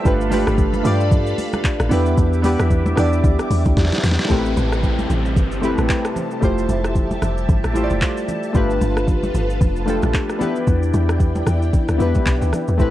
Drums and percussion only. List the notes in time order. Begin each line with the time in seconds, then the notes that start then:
0.05 kick, shaker
0.21 shaker
0.32 open hi-hat, high conga, shaker
0.47 cross-stick, shaker
0.58 kick, low conga, shaker
0.74 high conga, shaker
0.85 open hi-hat, low conga, shaker
1.01 shaker
1.12 kick, low conga, shaker
1.27 shaker
1.38 open hi-hat, high conga, shaker
1.53 cross-stick, high conga, shaker
1.65 kick, clap, shaker
1.80 cross-stick, high conga, shaker
1.91 open hi-hat, low conga, shaker
2.06 shaker
2.18 kick, shaker
2.33 shaker
2.44 open hi-hat, high conga, shaker
2.60 cross-stick, shaker
2.71 kick, low conga, shaker
2.86 high conga, shaker
2.97 cross-stick, open hi-hat, low conga, shaker
3.13 shaker
3.24 kick, low conga, shaker
3.39 cross-stick, shaker
3.51 open hi-hat, high conga, shaker
3.65 kick, high conga, shaker
3.77 kick, snare, shaker
3.85 snare
3.92 snare, high conga, shaker
3.98 snare
4.04 snare, open hi-hat, low conga, shaker
4.11 snare
4.19 snare, shaker
4.25 snare
4.30 kick, shaker
4.46 shaker
4.57 high conga, shaker
4.72 cross-stick, shaker
4.83 kick, low conga, shaker
4.99 high conga, shaker
5.10 low conga, shaker
5.25 shaker
5.36 kick, low conga, shaker
5.52 shaker
5.63 high conga, shaker
5.78 cross-stick, high conga, shaker
5.89 kick, clap, shaker
6.05 cross-stick, shaker
6.16 low conga, shaker
6.31 shaker
6.43 kick, shaker
6.58 shaker
6.69 high conga, shaker
6.84 cross-stick, shaker
6.95 kick, low conga, shaker
7.11 high conga, shaker
7.22 cross-stick, low conga, shaker
7.38 shaker
7.49 kick, low conga, shaker
7.64 cross-stick, shaker
7.75 high conga, shaker
7.90 high conga, shaker
8.02 kick, clap, shaker
8.17 shaker
8.29 low conga, shaker
8.43 shaker
8.55 kick, shaker
8.70 shaker
8.81 high conga, shaker
8.97 cross-stick, shaker
9.08 kick, low conga, shaker
9.23 high conga, shaker
9.35 low conga, shaker
9.50 shaker
9.61 kick, low conga, shaker
9.76 shaker
9.88 high conga, shaker
10.02 cross-stick, high conga, shaker
10.14 kick, clap, shaker
10.29 cross-stick, shaker
10.41 low conga, shaker
10.56 shaker
10.67 kick, shaker
10.83 shaker
10.94 high conga, shaker
11.09 cross-stick, shaker
11.20 kick, low conga, shaker
11.36 high conga, shaker
11.47 cross-stick, low conga, shaker
11.62 shaker
11.73 kick, low conga, shaker
11.88 cross-stick, shaker
12.00 high conga, shaker
12.15 kick, high conga, shaker
12.26 kick, clap, shaker
12.42 shaker
12.53 cross-stick, low conga, shaker
12.68 shaker
12.80 kick, shaker